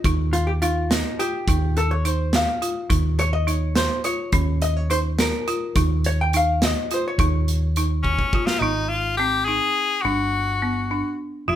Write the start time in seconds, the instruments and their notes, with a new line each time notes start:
0.04 fingered electric bass D#2, marimba D#4, kick, closed hi-hat
0.33 hollow-body jazz guitar F4, closed hi-hat
0.47 hollow-body jazz guitar G4
0.62 marimba D#4, hollow-body jazz guitar F4, closed hi-hat
0.91 hollow-body jazz guitar D#4, snare, closed hi-hat
1.19 marimba F4, hollow-body jazz guitar G4, closed hi-hat
1.47 fingered electric bass D#2, marimba D#4, kick, closed hi-hat
1.77 hollow-body jazz guitar A4, closed hi-hat
1.91 hollow-body jazz guitar C#5
2.05 marimba D#4, hollow-body jazz guitar C5, closed hi-hat
2.33 hollow-body jazz guitar F5, snare, closed hi-hat
2.62 marimba F4, closed hi-hat
2.90 fingered electric bass D#2, marimba D#4, kick, closed hi-hat
3.19 hollow-body jazz guitar C#5, closed hi-hat
3.33 hollow-body jazz guitar D#5
3.47 marimba D#4, hollow-body jazz guitar C#5, closed hi-hat
3.76 hollow-body jazz guitar C5, snare, closed hi-hat
4.04 marimba F4, hollow-body jazz guitar C#5, closed hi-hat
4.32 fingered electric bass D#2, marimba C#4, kick, closed hi-hat
4.62 hollow-body jazz guitar D#5, closed hi-hat
4.77 hollow-body jazz guitar C#5
4.90 marimba D#4, hollow-body jazz guitar C5, closed hi-hat
5.19 hollow-body jazz guitar A#4, snare, closed hi-hat
5.48 marimba F4, closed hi-hat
5.75 fingered electric bass D#2, marimba D#4, kick, closed hi-hat
6.04 hollow-body jazz guitar C#5, closed hi-hat
6.21 hollow-body jazz guitar G5
6.33 marimba D#4, hollow-body jazz guitar F5, closed hi-hat
6.62 hollow-body jazz guitar D#5, snare, closed hi-hat
6.91 marimba F4, hollow-body jazz guitar C5, closed hi-hat
7.08 hollow-body jazz guitar C#5
7.18 fingered electric bass D#2, marimba D#4, kick, closed hi-hat
7.48 closed hi-hat
7.76 marimba D#4, closed hi-hat
8.03 tenor saxophone C#4, kick
8.19 kick
8.33 marimba F4, kick
8.46 tenor saxophone F4, snare
8.59 fingered electric bass G#1, tenor saxophone D#4, marimba D#4
8.89 tenor saxophone F4
9.17 marimba C4, tenor saxophone G4
9.45 marimba D#4, tenor saxophone G#4
10.02 fingered electric bass G1, marimba D4, tenor saxophone F#4
10.62 marimba B3
10.91 marimba D4
11.48 fingered electric bass F1, marimba F4, tenor saxophone F4